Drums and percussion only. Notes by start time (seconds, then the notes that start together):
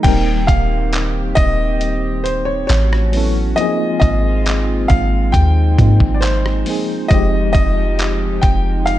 0.04 kick, closed hi-hat, crash
0.48 kick, closed hi-hat
0.93 clap, closed hi-hat
1.37 kick, closed hi-hat
1.81 closed hi-hat
2.26 closed hi-hat
2.69 clap, closed hi-hat
2.93 cross-stick
3.13 open hi-hat
3.58 closed hi-hat
4.02 kick, closed hi-hat
4.46 clap, closed hi-hat
4.90 kick, closed hi-hat
5.34 kick, closed hi-hat
5.78 kick, closed hi-hat
6.00 kick
6.22 clap, closed hi-hat
6.46 cross-stick
6.66 open hi-hat
7.11 kick, closed hi-hat
7.55 kick, closed hi-hat
7.99 clap, closed hi-hat
8.43 kick, closed hi-hat
8.87 closed hi-hat